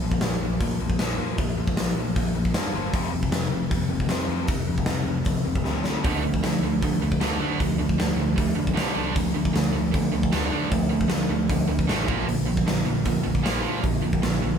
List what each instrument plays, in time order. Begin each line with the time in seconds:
0.01 picked electric bass A#1, distorted electric guitar A#2 F3
0.12 kick
0.21 picked electric bass A#1, distorted electric guitar A#2 F3, snare, open hi-hat
0.42 picked electric bass A#1, distorted electric guitar A#2 F3
0.60 distorted electric guitar A#2 F3, picked electric bass A#2, kick, open hi-hat
0.79 picked electric bass A#1, distorted electric guitar A#2 F3
0.90 kick
0.99 picked electric bass A#1, distorted electric guitar A#2 F3 A#3, snare, open hi-hat
1.18 distorted electric guitar A#2 F3 A#3, picked electric bass A#2
1.37 picked electric bass A#1, distorted electric guitar A#2 F3, kick, open hi-hat
1.57 picked electric bass A#1, distorted electric guitar A#2 F3
1.67 kick
1.76 picked electric bass A#1, distorted electric guitar A#2 F3, snare, open hi-hat
1.95 picked electric bass A#1, distorted electric guitar A#2 F3
2.15 picked electric bass A#1, distorted electric guitar A#2 F3, kick, open hi-hat
2.35 picked electric bass A#1, distorted electric guitar A#2 F3
2.45 kick
2.53 picked electric bass G2, distorted electric guitar A#2 F3 A#3, snare, open hi-hat
2.74 picked electric bass G1, distorted electric guitar A#2 F3 A#3
2.92 picked electric bass F1, distorted electric guitar F2 C3 F3, kick, open hi-hat
3.12 picked electric bass F1, distorted electric guitar F2 C3
3.23 kick
3.31 picked electric bass F1, distorted electric guitar F2 C3, snare, open hi-hat
3.50 picked electric bass F1, distorted electric guitar F2 C3
3.70 distorted electric guitar F2 C3, picked electric bass F2, kick, open hi-hat
3.89 picked electric bass F1, distorted electric guitar F2 C3
4.00 kick
4.08 picked electric bass F1, distorted electric guitar F2 C3 F3, snare, open hi-hat
4.27 distorted electric guitar F2 C3 F3, picked electric bass F2
4.47 picked electric bass F1, distorted electric guitar F2 C3, kick, open hi-hat
4.67 picked electric bass F1, distorted electric guitar F2 C3
4.78 kick
4.86 picked electric bass F1, distorted electric guitar F2 C3, snare, open hi-hat
5.04 picked electric bass F1, distorted electric guitar F2 C3
5.24 picked electric bass F1, distorted electric guitar F2 C3, kick, open hi-hat
5.45 picked electric bass F1, distorted electric guitar F2 C3
5.55 kick
5.64 picked electric bass D2, distorted electric guitar F2 C3 F3, snare
5.83 picked electric bass D2, distorted electric guitar F2 C3 F3, snare
6.04 picked electric bass D2, distorted electric guitar D3 F3 A3, overdriven electric guitar D4, kick, open hi-hat
6.22 picked electric bass D2, distorted electric guitar D3 F3, overdriven electric guitar A3
6.34 kick
6.43 picked electric bass D2, distorted electric guitar D3 F3, overdriven electric guitar A3, snare, open hi-hat
6.62 picked electric bass D2, distorted electric guitar D3 F3, overdriven electric guitar A3
6.81 distorted electric guitar D3 F3, picked electric bass D3, overdriven electric guitar A3, kick, open hi-hat
7.00 picked electric bass D2, distorted electric guitar D3 F3, overdriven electric guitar A3
7.12 kick
7.20 picked electric bass D2, distorted electric guitar D3 F3 A3, overdriven electric guitar D4, snare, open hi-hat
7.38 distorted electric guitar D3 F3 A3, picked electric bass D3, overdriven electric guitar D4
7.59 picked electric bass D2, distorted electric guitar D3 F3, overdriven electric guitar A3, kick, open hi-hat
7.78 picked electric bass D2, distorted electric guitar D3 F3, overdriven electric guitar A3
7.89 kick
7.98 picked electric bass D2, distorted electric guitar D3 F3, overdriven electric guitar A3, snare, open hi-hat
8.17 picked electric bass D2, distorted electric guitar D3 F3, overdriven electric guitar A3
8.36 picked electric bass D2, distorted electric guitar D3 F3, overdriven electric guitar A3, kick, open hi-hat
8.55 picked electric bass D2, distorted electric guitar D3 F3, overdriven electric guitar A3
8.67 kick
8.74 picked electric bass C3, distorted electric guitar D3 F3 A3, overdriven electric guitar D4, snare, open hi-hat
8.94 picked electric bass C2, distorted electric guitar D3 F3 A3, overdriven electric guitar D4
9.14 picked electric bass D2, distorted electric guitar D3 F3, overdriven electric guitar A3, kick, open hi-hat
9.32 picked electric bass D2, distorted electric guitar D3 F3, overdriven electric guitar A3
9.45 kick
9.53 picked electric bass D2, distorted electric guitar D3 F3, overdriven electric guitar A3, snare, open hi-hat
9.73 picked electric bass D2, distorted electric guitar D3 F3, overdriven electric guitar A3
9.93 distorted electric guitar D3 F3, picked electric bass D3, overdriven electric guitar A3, kick, open hi-hat
10.12 picked electric bass D2, distorted electric guitar D3 F3, overdriven electric guitar A3
10.23 kick
10.32 picked electric bass D2, distorted electric guitar D3 F3 A3, overdriven electric guitar D4, snare, open hi-hat
10.51 distorted electric guitar D3 F3 A3, picked electric bass D3, overdriven electric guitar D4
10.70 picked electric bass D2, distorted electric guitar D3 F3, overdriven electric guitar A3, kick, open hi-hat
10.89 picked electric bass D2, distorted electric guitar D3 F3, overdriven electric guitar A3
11.01 kick
11.09 picked electric bass D2, distorted electric guitar D3 F3, overdriven electric guitar A3, snare, open hi-hat
11.29 picked electric bass D2, distorted electric guitar D3 F3, overdriven electric guitar A3
11.48 picked electric bass D2, distorted electric guitar D3 F3, overdriven electric guitar A3, kick, open hi-hat
11.68 picked electric bass D2, distorted electric guitar D3 F3, overdriven electric guitar A3
11.79 kick
11.87 picked electric bass A1, distorted electric guitar D3 F3 A3, overdriven electric guitar D4, snare, open hi-hat
12.07 picked electric bass A#1, distorted electric guitar A#2 D3 F3, overdriven electric guitar A#3, kick
12.26 picked electric bass A#1, distorted electric guitar A#2 D3, overdriven electric guitar F3, open hi-hat
12.46 picked electric bass A#1, distorted electric guitar A#2 D3, overdriven electric guitar F3
12.57 kick
12.65 picked electric bass A#1, distorted electric guitar A#2 D3, overdriven electric guitar F3, snare, open hi-hat
12.85 picked electric bass A#1, distorted electric guitar A#2 D3, overdriven electric guitar F3
13.04 distorted electric guitar A#2 D3, picked electric bass A#2, overdriven electric guitar F3, kick, open hi-hat
13.23 picked electric bass A#1, distorted electric guitar A#2 D3, overdriven electric guitar F3
13.35 kick
13.42 picked electric bass A#1, distorted electric guitar A#2 D3 F3, overdriven electric guitar A#3, snare, open hi-hat
13.62 distorted electric guitar A#2 D3 F3, picked electric bass A#2, overdriven electric guitar A#3
13.82 picked electric bass A#1, distorted electric guitar A#2 D3, overdriven electric guitar F3, kick, open hi-hat
14.00 picked electric bass A#1, distorted electric guitar A#2 D3, overdriven electric guitar F3
14.13 kick
14.19 distorted electric guitar A#2 D3, overdriven electric guitar F3, snare, open hi-hat
14.24 picked electric bass A#1
14.39 picked electric bass A#1, distorted electric guitar A#2 D3, overdriven electric guitar F3